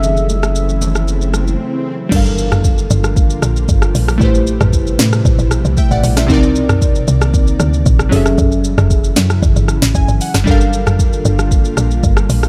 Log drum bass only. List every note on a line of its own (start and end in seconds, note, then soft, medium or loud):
2.12 2.86 G1 loud
2.91 3.41 G1 loud
3.43 3.68 A#1 medium
3.69 3.94 G1 loud
3.95 4.20 A#1 medium
4.21 4.59 A1 loud
4.61 4.98 A1 loud
4.99 5.24 A2 loud
5.25 5.38 A1 loud
5.39 5.64 A#1 loud
5.65 5.77 C2 medium
5.91 6.03 A1 medium
6.04 6.31 A#1 loud
6.29 7.04 C2 loud
7.08 7.58 C2 loud
7.60 7.85 D2 loud
7.86 8.11 A#1 loud
8.12 8.37 F#1 loud
8.38 8.77 F#1 loud
8.78 9.15 F#1 loud
9.17 9.42 F#2 loud
9.42 9.56 F#1 loud
9.56 9.81 G1 loud
9.82 9.94 A1 medium
9.95 10.08 F#1 loud
10.08 10.21 G1 medium
10.35 10.46 F#1 medium
10.47 11.21 G1 loud
11.25 11.76 G1 loud
11.78 12.03 A#1 medium
12.04 12.29 G1 medium
12.30 12.49 A#1 medium